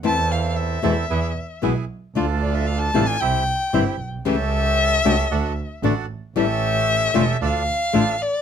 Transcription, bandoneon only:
\new Staff \with { instrumentName = "Bandoneon" } { \time 4/4 \key d \dorian \tempo 4 = 114 <c' e' a'>4. <c' e' a'>8 <b e' gis'>8 r8 <b e' gis'>8 r8 | <d' f' a'>4. <d' f' a'>8 <c' e' g'>8 r8 <c' e' g'>8 r8 | <cis' g' a'>4. <cis' g' a'>8 <d' fis' a'>8 r8 <d' fis' a'>8 r8 | <cis' g' a'>4. <cis' g' a'>8 <d' f' a'>8 r8 <d' f' a'>8 r8 | }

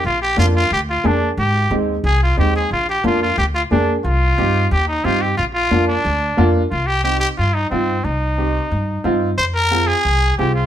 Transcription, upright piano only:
\new Staff \with { instrumentName = "Upright piano" } { \time 4/4 \key c \minor \tempo 4 = 180 r4 <bes d' f'>8 r4. <bes d' aes'>8 r8 | r4 <aes c' ees'>8 r4. <aes c' ees'>8 r8 | r4 <bes d' f'>8 r4. <bes d' aes'>8 r8 | r4 <c' ees' g'>8 r4. <c' ees' g'>8 r8 |
r4 <bes d' f'>8 r4. <bes d' f'>8 r8 | r4 <c' ees' g'>8 r4. <c' ees' f'>8 r8 | r4 <c' ees' g'>8 r4. <c' ees' f'>8 r8 | r4 <c' f' aes'>8 r4. <c' f' aes'>8 r8 | }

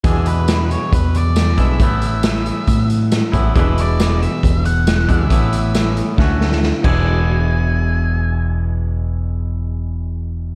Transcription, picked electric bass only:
\new Staff \with { instrumentName = "Picked electric bass" } { \clef bass \time 4/4 \key e \mixolydian \tempo 4 = 137 e,2 e,4. b,,8 | a,,2 a,4. a,,8 | e,,2 e,,4. e,8 | a,,2 d,4. e,,8~ |
e,,1~ | e,,1 | }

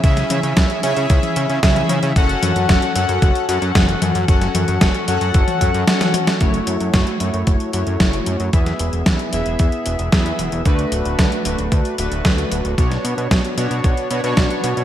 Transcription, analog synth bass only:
\new Staff \with { instrumentName = "Analog synth bass" } { \clef bass \time 4/4 \key fis \minor \tempo 4 = 113 cis,8 cis16 cis16 cis,16 r16 cis16 cis16 cis,16 r16 cis16 cis16 cis,8 cis16 cis16 | fis,,8 fis,16 fis,16 fis,,16 r16 fis,16 fis,16 fis,,16 r16 fis,16 fis,16 fis,,8 fis,16 fis,16 | fis,,8 fis,16 fis,16 fis,,16 r16 fis,16 fis,16 fis,,16 r16 fis,16 fis,16 r4 | fis,,8 fis,16 fis,16 fis,,16 r16 fis,16 fis,16 fis,,16 r16 fis,16 fis,16 fis,,8 fis,16 fis,16 |
e,8 e,,16 e,,16 e,16 r16 e,,16 e,,16 e,16 r16 e,,16 e,,16 e,8 e,,16 e,,16 | d,8 d,,16 d,,16 d,16 r16 d,,16 d,,16 d,16 r16 d,,16 d,,16 d,8 d,,16 d,,16 | b,,8 b,16 b,16 b,,16 r16 b,16 b,16 b,,16 r16 b,16 b,16 b,,16 r16 b,16 b,16 | }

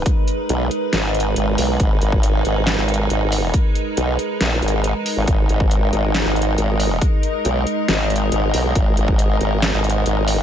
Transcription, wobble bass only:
\new Staff \with { instrumentName = "Wobble bass" } { \clef bass \time 4/4 \key gis \minor \tempo 4 = 138 r4 b,,8 r8 gis,,4 gis,,8 b,,8 | gis,,8 gis,,4 gis,,8. gis,,8. gis,,4 | r4 b,,8 r8 ais,,8 gis,,8. r8 gis,,16 | gis,,8 gis,,4 gis,,8. gis,,8. gis,,4 |
r4 b,,8 r8 gis,,4 gis,,8 b,,8 | gis,,8 gis,,4 gis,,8. gis,,8. gis,,4 | }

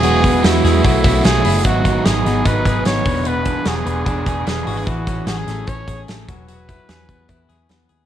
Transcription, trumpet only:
\new Staff \with { instrumentName = "Trumpet" } { \time 4/4 \key e \major \tempo 4 = 149 gis'4 e'2 gis'4 | fis'4 gis'4 b'4 cis''4 | b'4 gis'2 gis'4 | fis'4 gis'4 cis''4 r8 b'8~ |
b'2. r4 | }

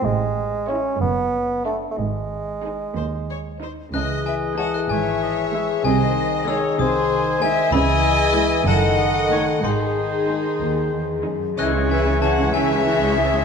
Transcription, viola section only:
\new Staff \with { instrumentName = "Viola section" } { \time 6/8 \key cis \minor \tempo 4. = 63 r4 e'8 r4 d'8 | r4 dis'8 r4 dis'8 | r4 <gis e'>8 r4 <gis e'>8 | r4 <gis dis'>8 r4 <gis dis'>8 |
r4 <gis e'>8 r4 <a dis'>8 | r4 <gis dis'>8 r4 <gis dis'>8 | <e e'>16 <gis cis'>16 <e e'>16 <gis cis'>16 <e e'>16 <gis cis'>16 <e e'>16 <gis cis'>16 <e e'>16 <gis cis'>16 <e e'>16 <gis cis'>16 | }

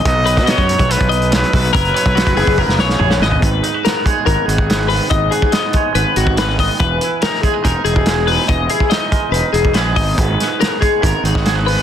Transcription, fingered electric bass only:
\new Staff \with { instrumentName = "Fingered electric bass" } { \clef bass \time 4/4 \key gis \minor \tempo 4 = 142 b,,8. b,8 fis,8 b,,8 b,,4~ b,,16 b,,8 | fis,,8 r16 b,,8 fis,,16 fis,,16 fis,,8 fis,,16 b,,8 ais,,8 gis,,8 | gis,,8 r4. gis,,16 r16 gis,,4. | gis,,8 r4. gis,,16 r16 gis,,4. |
e,,8 r4. e,,16 r16 e,,4. | e,,8 r4. e,,16 r16 e,,8 ais,,8 gis,,8 | gis,,8 r4. gis,,16 r16 gis,,4. | }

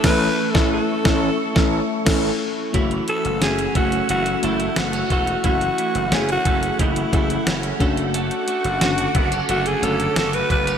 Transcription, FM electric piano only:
\new Staff \with { instrumentName = "FM electric piano" } { \time 4/4 \key fis \minor \tempo 4 = 89 <a cis' e' a'>8 r16 <a cis' e' a'>8 r16 <a cis' e' a'>8 r16 <a cis' e' a'>8 r16 <a cis' e' a'>8 r8 | <a cis' e' fis'>8. r16 <a cis' e' fis'>4~ <a cis' e' fis'>16 r16 <a cis' e' fis'>4~ <a cis' e' fis'>16 r16 | <a cis' e' fis'>8. r16 <a cis' e' gis'>4~ <a cis' e' gis'>16 r16 <a cis' e' gis'>4 <a cis' d' fis'>8~ | <a cis' d' fis'>8. r16 <d a cis' fis'>4~ <d a cis' fis'>16 r16 <d a cis' fis'>4~ <d a cis' fis'>16 r16 | }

